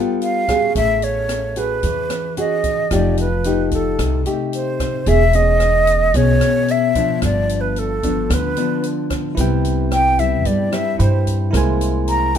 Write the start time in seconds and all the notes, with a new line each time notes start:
Already playing: G3 B3 F4 A4
0.22 F5, closed hi-hat
0.48 C#4 F#4 G#4, kick, cross-stick, closed hi-hat
0.75 A1 A3 E5, kick, closed hi-hat
1.02 C#5, closed hi-hat
1.29 cross-stick, closed hi-hat
1.56 C#4 F#4 G#4 B4, closed hi-hat
1.83 E2 E3, kick, closed hi-hat
2.10 cross-stick, closed hi-hat
2.37 C#4 F#4 G#4 D#5, closed hi-hat
2.64 kick, closed hi-hat
2.91 F1 F3 A3 D#4 G4 D5, kick, cross-stick, closed hi-hat
3.17 B4, closed hi-hat
3.44 A3 D#4 G4, closed hi-hat
3.71 A4, kick, closed hi-hat
3.99 C2 C3, kick, cross-stick, closed hi-hat
4.26 A3 D#4 G4, closed hi-hat
4.53 C5, closed hi-hat
4.80 kick, cross-stick, closed hi-hat
5.06 E1 E3 B3 C#4 G#4 E5, kick, closed hi-hat
5.33 B3 C#4 G#4 D#5, closed hi-hat
5.60 cross-stick, closed hi-hat
5.87 closed hi-hat
6.14 B1 B2 B3 C#4 G#4 C#5, kick, closed hi-hat
6.41 cross-stick, closed hi-hat
6.68 E5, closed hi-hat
6.95 F3 B3 D4, kick, closed hi-hat
7.22 G1 G2 D5, kick, cross-stick, closed hi-hat
7.49 closed hi-hat
7.61 B4
7.76 A4, closed hi-hat
8.03 F3 B3 D4, kick, closed hi-hat
8.30 D2 D3 B4, kick, cross-stick, closed hi-hat
8.57 F3 B3 D4, closed hi-hat
8.83 closed hi-hat
9.10 kick, cross-stick, closed hi-hat
9.35 C2 C3 G3 E4 B4, kick, closed hi-hat
9.39 B3 C4 E4 G5
9.65 closed hi-hat
9.91 G5, cross-stick, closed hi-hat
10.18 G3 B3 E4 E5, kick, closed hi-hat
10.45 G2 D5, kick, closed hi-hat
10.72 G3 E4 E5, cross-stick, closed hi-hat
10.98 G2 E4 C5 G5 B5, closed hi-hat
11.26 kick, closed hi-hat
11.51 C2 C3 G#3 A#3 E4 A#4 C5, kick, cross-stick, closed hi-hat
11.57 G#5
11.81 closed hi-hat
12.08 A#5, closed hi-hat
12.35 G#3 A#3, kick, closed hi-hat